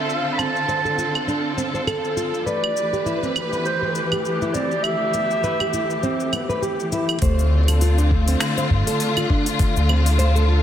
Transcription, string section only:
0.00 2.43 D3 medium
0.00 2.43 C4 medium
0.00 2.43 F4 medium
0.00 2.43 A4 medium
2.47 7.18 D2 medium
2.47 7.18 E3 medium
2.47 7.18 G4 medium
2.47 4.82 B4 medium
7.22 10.63 D3 medium
7.22 10.63 A3 medium
7.22 9.57 C4 medium
7.22 10.63 F4 medium

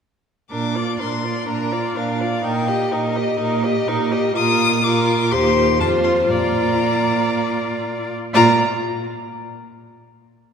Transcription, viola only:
0.51 0.77 D4 soft
0.75 1.01 F4 soft
0.99 1.25 D4 soft
1.24 1.47 F4 soft
1.47 1.73 D4 soft
1.72 1.97 F4 soft
1.96 2.22 D4 soft
2.20 2.44 F4 soft
2.44 2.70 D#4 soft
2.68 2.93 G4 soft
2.92 3.17 D#4 soft
3.16 3.39 G4 soft
3.40 3.65 D#4 soft
3.63 3.89 G4 soft
3.88 4.13 D#4 soft
4.12 4.35 G4 soft
4.36 4.81 F4 medium
4.83 5.33 F4 medium
5.31 5.82 G4 medium
5.80 6.30 F4 medium
6.30 8.10 F4 soft
8.34 8.62 F4 medium

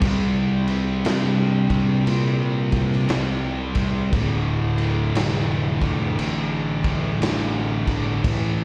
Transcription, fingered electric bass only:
0.02 1.01 C2 loud
1.05 2.04 G2 medium
2.07 3.06 A#2 medium
3.10 4.09 C2 medium
4.13 5.12 D1 loud
5.16 6.15 F1 loud
6.19 7.18 A1 medium
7.21 7.83 A1 medium
7.87 8.22 G1 medium
8.24 8.64 A1 loud

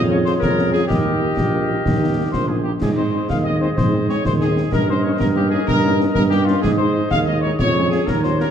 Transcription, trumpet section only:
0.09 0.16 C#5 medium
0.24 0.32 C5 medium
0.39 0.70 A#4 medium
0.72 0.88 G#4 medium
0.86 2.28 G4 medium
2.32 2.47 C5 medium
2.47 2.64 G#4 medium
2.63 2.71 G4 medium
2.79 2.87 G#4 medium
2.96 3.26 C5 medium
3.28 3.36 F5 medium
3.44 3.59 D#5 medium
3.60 3.68 C5 medium
3.75 4.05 C5 medium
4.09 4.24 C#5 medium
4.23 4.31 C5 medium
4.39 4.70 G#4 medium
4.72 4.87 A#4 medium
4.88 5.03 C5 medium
5.02 5.11 C#5 medium
5.11 5.20 C5 medium
5.19 5.26 A#4 medium
5.35 5.50 G4 medium
5.50 5.66 G#4 medium
5.66 5.99 A#4 loud
6.13 6.21 A#4 loud
6.30 6.46 G4 loud
6.44 6.62 F4 loud
6.61 6.69 G#4 loud
6.77 7.08 C5 medium
7.09 7.17 F5 loud
7.26 7.41 D#5 medium
7.42 7.49 C#5 loud
7.58 7.89 C#5 loud
7.90 8.05 G#4 medium
8.06 8.23 A#4 loud
8.22 8.37 C5 medium
8.39 8.51 A#4 medium

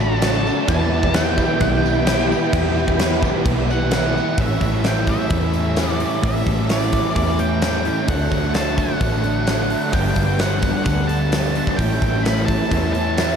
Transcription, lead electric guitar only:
0.01 0.67 A5 loud
0.69 1.15 A5 loud
1.16 1.61 G5 medium
1.62 3.88 G5 medium
3.71 4.41 F#5 loud
4.41 4.83 E5 medium
4.87 5.10 G5 medium
5.09 5.90 E5 loud
5.90 6.25 D5 loud
6.26 6.70 E5 loud
6.71 7.15 D5 medium
7.16 7.40 D5 medium
7.39 8.09 G5 loud
8.09 8.54 F#5 loud
8.55 8.78 A5 loud
8.79 9.97 F#5 loud
9.93 10.40 G5 loud
10.41 10.84 F#5 loud
10.85 11.09 F#5 loud
11.07 11.80 A5 loud
11.77 12.25 G5 loud
12.23 12.46 B5 loud
12.46 12.92 A5 loud
12.93 13.36 A5 loud

